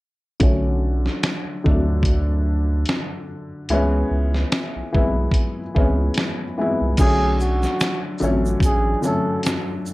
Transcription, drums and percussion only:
0.40 kick, closed hi-hat
1.06 snare
1.23 finger snap, snare, closed hi-hat
1.66 kick
2.03 kick, closed hi-hat
2.86 finger snap, snare, closed hi-hat
3.69 closed hi-hat
4.34 snare
4.52 finger snap, snare, closed hi-hat
4.95 kick
5.32 kick, closed hi-hat
5.76 kick
6.14 finger snap, snare, closed hi-hat
6.97 kick, closed hi-hat, crash, shaker
7.40 shaker
7.63 snare, shaker
7.80 finger snap, snare, closed hi-hat, shaker
8.18 shaker
8.22 shaker
8.46 shaker
8.60 kick, closed hi-hat, shaker
9.03 shaker
9.43 finger snap, snare, closed hi-hat, shaker
9.86 shaker

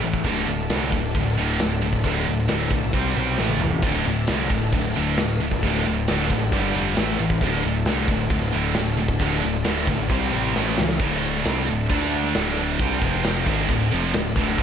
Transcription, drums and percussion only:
0.02 ride
0.14 kick
0.24 kick, ride
0.47 ride
0.59 snare
0.70 snare, ride
0.92 kick, ride
1.15 kick, ride
1.38 ride
1.59 snare, ride
1.82 ride
1.93 kick
2.04 kick, ride
2.26 ride
2.38 snare
2.48 snare, ride
2.71 kick, ride
2.93 kick, ride
3.16 ride
3.38 snare
3.49 high tom
3.59 mid tom
3.71 floor tom
3.82 kick, crash
4.05 ride
4.27 snare, ride
4.50 kick, ride
4.72 kick, ride
4.95 ride
5.17 snare, ride
5.40 ride
5.52 kick
5.63 kick, ride
5.85 ride
6.08 snare, ride
6.30 kick, ride
6.52 kick, ride
6.74 ride
6.97 snare, ride
7.19 ride
7.30 kick
7.41 kick, ride
7.63 ride
7.86 snare, ride
8.08 kick, ride
8.30 kick, ride
8.52 ride
8.74 snare, ride
8.97 ride
9.08 kick
9.19 kick, ride
9.42 ride
9.54 snare
9.64 snare, ride
9.87 kick, ride
10.10 kick, ride
10.33 ride
10.56 snare
10.78 snare
10.89 snare
10.99 kick, crash
11.23 ride
11.35 snare
11.45 snare, ride
11.68 ride
11.90 kick, ride
12.12 ride
12.24 snare
12.34 snare, ride
12.57 ride
12.79 kick, ride
13.02 kick, ride
13.24 snare, ride
13.46 kick, crash
13.69 kick
13.91 ride
14.03 snare
14.14 snare, ride
14.36 kick, ride
14.58 kick, ride

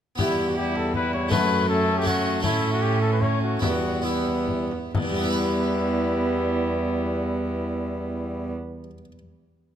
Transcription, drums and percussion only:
0.19 frame drum
0.76 frame drum
0.94 frame drum
1.13 frame drum
1.31 frame drum
1.88 frame drum
2.06 frame drum
2.26 frame drum
2.44 frame drum
3.02 frame drum
3.21 frame drum
3.41 frame drum
3.62 frame drum
4.26 frame drum
4.48 frame drum
4.71 frame drum
4.95 frame drum

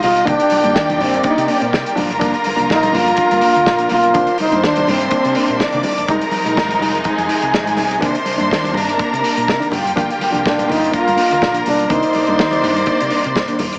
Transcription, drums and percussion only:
0.03 open hi-hat, muted conga, high conga, low conga
0.16 closed hi-hat
0.27 kick, closed hi-hat, muted conga, low conga
0.40 closed hi-hat
0.50 open hi-hat, muted conga, high conga
0.64 closed hi-hat
0.76 kick, snare, muted conga
0.90 closed hi-hat, high conga
1.01 open hi-hat, muted conga, high conga, low conga
1.14 closed hi-hat
1.23 kick, closed hi-hat, muted conga
1.38 closed hi-hat
1.48 open hi-hat
1.62 closed hi-hat
1.73 kick, snare, muted conga
1.86 closed hi-hat
1.97 open hi-hat, muted conga, high conga, low conga
2.11 closed hi-hat
2.21 kick, closed hi-hat, low conga
2.34 closed hi-hat
2.44 open hi-hat, muted conga, high conga
2.58 closed hi-hat
2.70 kick, snare
2.83 closed hi-hat, high conga
2.94 open hi-hat, muted conga, high conga, low conga
3.07 closed hi-hat
3.17 kick, closed hi-hat, muted conga
3.31 closed hi-hat
3.41 open hi-hat
3.55 closed hi-hat
3.66 kick, snare
3.78 closed hi-hat
3.89 open hi-hat, muted conga, high conga, low conga
4.03 closed hi-hat
4.14 kick, closed hi-hat, muted conga, low conga
4.27 closed hi-hat
4.38 open hi-hat, muted conga, high conga
4.52 closed hi-hat
4.64 kick, snare
4.76 closed hi-hat, high conga
4.87 open hi-hat, muted conga, high conga, low conga
5.01 closed hi-hat
5.11 kick, closed hi-hat, muted conga
5.25 closed hi-hat
5.35 open hi-hat, muted conga
5.48 closed hi-hat
5.60 kick, snare, muted conga
5.73 closed hi-hat
5.83 open hi-hat, high conga, low conga
5.98 closed hi-hat
6.08 kick, closed hi-hat, muted conga, low conga
6.21 closed hi-hat
6.31 open hi-hat, muted conga, high conga
6.46 closed hi-hat
6.57 kick, snare, muted conga
6.68 closed hi-hat, high conga
6.79 open hi-hat, high conga, low conga
6.95 closed hi-hat
7.04 kick, closed hi-hat
7.18 closed hi-hat
7.29 open hi-hat
7.42 closed hi-hat
7.53 kick, snare, muted conga
7.67 closed hi-hat
7.77 open hi-hat, muted conga, high conga, low conga
7.91 closed hi-hat
8.01 kick, closed hi-hat, muted conga, low conga
8.15 closed hi-hat
8.25 open hi-hat, high conga
8.40 closed hi-hat
8.50 kick, snare, muted conga
8.64 closed hi-hat, high conga
8.74 open hi-hat, muted conga, high conga, low conga
8.89 closed hi-hat
8.99 kick, closed hi-hat, muted conga
9.14 closed hi-hat
9.24 open hi-hat
9.37 closed hi-hat
9.48 kick, snare
9.62 closed hi-hat
9.72 open hi-hat, muted conga, high conga, low conga
9.87 closed hi-hat
9.96 kick, closed hi-hat, muted conga, low conga
10.10 closed hi-hat
10.21 open hi-hat, muted conga, high conga
10.35 closed hi-hat
10.46 kick, snare, muted conga
10.58 closed hi-hat, high conga
10.69 open hi-hat, high conga, low conga
10.84 closed hi-hat
10.94 kick, closed hi-hat
11.08 closed hi-hat
11.18 open hi-hat, muted conga
11.31 closed hi-hat
11.42 kick, snare
11.54 closed hi-hat
11.66 open hi-hat, high conga, low conga
11.80 closed hi-hat
11.90 kick, closed hi-hat, low conga
12.03 closed hi-hat
12.13 open hi-hat, high conga
12.27 closed hi-hat
12.39 kick, snare, muted conga
12.51 closed hi-hat, high conga
12.62 open hi-hat, high conga, low conga
12.77 closed hi-hat
12.86 kick, closed hi-hat, muted conga
13.00 closed hi-hat
13.10 open hi-hat, muted conga
13.24 closed hi-hat
13.36 kick, snare
13.48 closed hi-hat
13.59 open hi-hat, muted conga, high conga, low conga
13.73 closed hi-hat

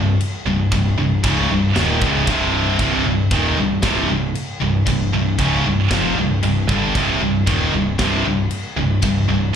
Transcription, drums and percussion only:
0.21 crash
0.72 kick, crash
1.24 kick, crash
1.76 snare, crash
2.02 kick
2.27 kick, crash
2.79 kick, crash
3.31 kick, crash
3.83 kick, snare, crash
4.35 crash
4.87 kick, crash
5.39 kick, crash
5.91 kick, snare, crash
6.43 crash
6.69 kick
6.95 kick, crash
7.47 kick, crash
7.99 kick, snare, crash
8.51 crash
9.02 kick, crash

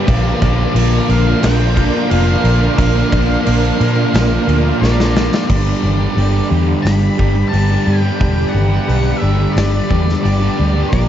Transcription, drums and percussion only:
0.08 kick, crash
0.42 kick, crash
0.76 crash
1.10 crash
1.43 snare, crash
1.77 kick, crash
2.11 crash
2.45 crash
2.78 kick, crash
3.12 kick, crash
3.46 crash
3.81 crash
4.14 snare, crash
4.49 crash
4.84 snare
5.00 snare
5.17 snare
5.34 snare
5.50 kick, crash
6.18 open hi-hat
6.86 snare, open hi-hat
7.19 kick
7.53 open hi-hat
8.21 kick, open hi-hat
8.89 open hi-hat
9.57 snare, open hi-hat
9.91 kick
10.09 snare
10.25 open hi-hat
10.92 kick, open hi-hat

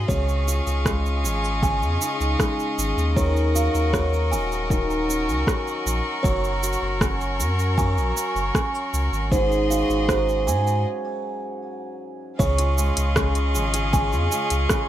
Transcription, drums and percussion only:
0.09 kick, shaker
0.29 shaker
0.48 shaker
0.67 shaker
0.86 kick, cross-stick, shaker
1.06 shaker
1.25 shaker
1.44 shaker
1.63 kick, shaker
1.83 shaker
2.02 shaker
2.21 shaker
2.40 kick, cross-stick, shaker
2.60 shaker
2.79 shaker
2.98 shaker
3.16 kick, shaker
3.37 shaker
3.56 shaker
3.75 shaker
3.93 kick, cross-stick, shaker
4.13 shaker
4.33 shaker
4.52 shaker
4.70 kick, shaker
4.91 shaker
5.10 shaker
5.29 shaker
5.47 kick, cross-stick, shaker
5.68 shaker
5.87 shaker
6.24 kick, shaker
6.44 shaker
6.63 shaker
6.73 shaker
7.01 kick, cross-stick, shaker
7.21 shaker
7.40 shaker
7.59 shaker
7.78 kick, shaker
7.98 shaker
8.17 shaker
8.36 shaker
8.55 kick, cross-stick, shaker
8.75 shaker
8.94 shaker
9.13 shaker
9.32 kick, shaker
9.52 shaker
9.71 shaker
9.90 shaker
10.09 kick, cross-stick, shaker
10.29 shaker
10.48 shaker
10.67 shaker
12.40 kick, shaker
12.59 closed hi-hat, shaker
12.78 shaker
12.97 closed hi-hat, shaker
13.16 kick, cross-stick, shaker
13.35 closed hi-hat, shaker
13.55 shaker
13.74 closed hi-hat, shaker
13.93 kick, shaker
14.13 shaker
14.32 shaker
14.50 closed hi-hat, shaker
14.69 kick, cross-stick, shaker

